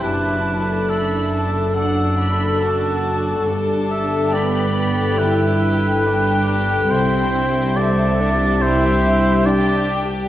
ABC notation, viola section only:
X:1
M:4/4
L:1/8
Q:1/4=70
K:G
V:1 name="Viola section"
D D3 D4 | D2 B, B, E2 D2 | C2 C D E E D2 |]